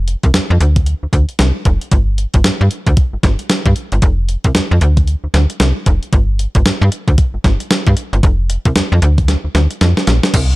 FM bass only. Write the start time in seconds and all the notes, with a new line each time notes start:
Already playing: F1
0.24 C2
0.50 F2
0.61 D2
1.03 D2
1.13 D2
1.40 C2
1.66 F1
1.92 G1
2.34 G1
2.45 G2
2.61 G2
2.87 D2
3.13 G1
3.23 G1
3.66 G2
3.92 G1
4.02 F1
4.45 C2
4.55 F2
4.71 F2
4.81 D2
5.24 D2
5.34 D2
5.60 C2
5.87 F1
6.13 G1
6.55 G1
6.66 G2
6.82 G2
7.08 D2
7.34 G1
7.44 G1
7.87 G2
8.13 G1
8.23 F1
8.66 C2
8.76 F2
8.92 F2
9.02 D2
9.44 D2
9.55 D2
9.81 F2
10.08 A#1
10.34 C2